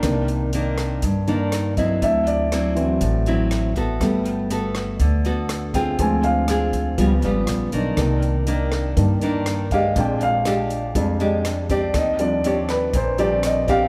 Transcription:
<<
  \new Staff \with { instrumentName = "Grand piano" } { \time 4/4 \key c \minor \tempo 4 = 121 r2. r8 ees''8 | e''8 d''4. r2 | r2. r8 g''8 | aes''8 f''4. r2 |
r2. r8 f''8 | g''8 f''4. r4. d''8 | ees''8 d''8 des''8 ces''8 c''8 d''8 ees''8 f''8 | }
  \new Staff \with { instrumentName = "Grand piano" } { \time 4/4 \key c \minor <ees bes d'>8 r2 <ees bes d'>8 r4 | r4. <e fis c'>8 r2 | <a b>8 r2. r8 | <f aes c'>8 r4. <f g ces'>2 |
<ees bes d'>2 <ees bes d'>8 r4. | <aes c' d'>2 <g aes c' d'>8 r4. | r8 <f g c' d'>2 <f g c' d'>8 r4 | }
  \new Staff \with { instrumentName = "Nylon-string guitar" } { \time 4/4 \key c \minor << { <ees bes d'>4 <ees bes d'>4 r8 <ees bes d'>4 <ges c' fes'>8~ | <ges c' fes'>4 <fis c' e'>4 r8 <fis c' e'>4 <ces' fis' a'>8~ | <ces' fis' a'>4 <b fis' a'>4. <b fis' a'>4 <c' f' aes'>8~ | <c' f' aes'>4 <c' f' aes'>4 <g ces' f'>8 <g ces' f'>4 <ees bes d'>8~ |
<ees bes d'>4 <ees bes d'>4. <ees bes d'>4 <aes d' g'>8~ | <aes d' g'>4 <aes d' g'>4. <aes d' g'>4 <c' d' g'>8~ | <c' d' g'>4 <c' d' g'>4 r8 <c' d' g'>4 <c' d' g'>8 | } \\ { c2 g,2 | d2 a,2 | g2 d2 | d2 des2 |
c2 g,2 | bes,2 f,2 | ees2 bes,2 | } >> }
  \new Staff \with { instrumentName = "Upright bass" } { \clef bass \time 4/4 \key c \minor c,2 g,2 | d,2 a,,2 | g,,2 d,2 | d,2 des,8 aes,,8 bes,,8 ces,8 |
c,2 g,2 | bes,,2 f,2 | ees,2 bes,,2 | }
  \new DrumStaff \with { instrumentName = "Drums" } \drummode { \time 4/4 <hh bd ss>8 hh8 hh8 <hh ss>8 <hh bd>8 hh8 <hh ss>8 <hh bd>8 | <hh bd>8 hh8 <hh ss>8 hh8 <hh bd>8 hh8 <hh ss>8 <hh bd>8 | <hh bd ss>8 hh8 hh8 <hh ss>8 <hh bd>8 hh8 <hh ss>8 <hh bd>8 | <hh bd>8 hh8 <hh ss>8 <hh bd>8 <hh bd>8 hh8 <hh ss>8 hh8 |
<hh bd ss>8 hh8 hh8 <hh ss>8 <hh bd>8 hh8 <hh ss>8 <hh bd>8 | <hh bd>8 hh8 <hh ss>8 hh8 <hh bd>8 hh8 <hh ss>8 <hh bd>8 | <hh bd ss>8 hh8 hh8 <hh ss>8 <hh bd>8 hh8 <hh ss>8 <hh bd>8 | }
>>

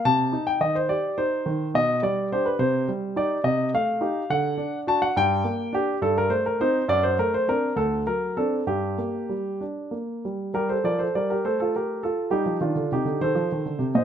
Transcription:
<<
  \new Staff \with { instrumentName = "Grand piano" } { \time 6/8 \key c \dorian \tempo 4. = 69 a''8. g''16 ees''16 c''16 d''8 c''4 | ees''8 d''8 c''16 b'16 c''8 r8 d''8 | \key g \minor ees''8 f''4 fis''4 a''16 fis''16 | g''4 g'8 a'16 bes'16 c''16 bes'16 c''8 |
d''16 c''16 bes'16 c''16 bes'8 a'8 bes'8 a'8 | g'4. r4. | <g' bes'>16 <a' c''>16 <bes' d''>16 <a' c''>16 <bes' d''>16 <g' bes'>16 <a' c''>16 <f' a'>16 <g' bes'>8 <f' a'>8 | <ees' g'>8 <d' f'>8 <ees' g'>8 <a' c''>4~ <a' c''>16 <c'' ees''>16 | }
  \new Staff \with { instrumentName = "Grand piano" } { \clef bass \time 6/8 \key c \dorian c8 ees'8 ees8 g'8 ees'8 ees8 | b,8 g8 <d' g'>8 c8 g8 <ees' g'>8 | \key g \minor c8 a8 <ees' g'>8 d8 d'8 <d' fis'>8 | g,8 bes8 d'8 g,8 a8 <c' ees'>8 |
fis,8 a8 <c' d'>8 d,8 fis8 <c' d'>8 | g,8 bes8 g8 d'8 bes8 g8 | g8 f8 g8 a4. | g16 f16 ees16 d16 c16 d16 ees16 f16 ees16 d16 c16 bes,16 | }
>>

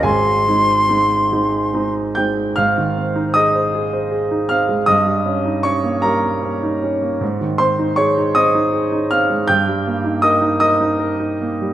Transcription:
<<
  \new Staff \with { instrumentName = "Flute" } { \time 6/8 \key aes \major \tempo 4. = 52 c'''2~ c'''16 r8. | r2. | r2. | r2. |
r2. | }
  \new Staff \with { instrumentName = "Grand piano" } { \time 6/8 \key aes \major << { <aes' aes''>2~ <aes' aes''>8 <g'' g'''>8 | <f'' f'''>4 <ees'' ees'''>4. <f'' f'''>8 | <ees'' ees'''>4 <des'' des'''>8 <bes' bes''>4 r8 | r8 <c'' c'''>8 <des'' des'''>8 <ees'' ees'''>4 <f'' f'''>8 |
<g'' g'''>4 <ees'' ees'''>8 <ees'' ees'''>4. | } \\ { <aes,, aes,>8 <aes c' ees'>8 <aes c' ees'>8 <aes c' ees'>8 <aes c' ees'>8 <aes c' ees'>8 | aes,16 ees16 c'16 ees'16 aes'16 c''16 aes'16 c''16 aes'16 ees'16 c'16 aes16 | g,16 g16 des'16 ees'16 des'16 bes16 g16 bes16 des'16 ees'16 des'16 bes16 | aes,16 ees16 c'16 ees'16 aes'16 ees'16 c'16 ees'16 aes'16 ees'16 c'16 aes16 |
g,16 g16 bes16 ees'16 bes'16 ees'16 bes'16 ees'16 bes'16 ees'16 bes16 g16 | } >> }
>>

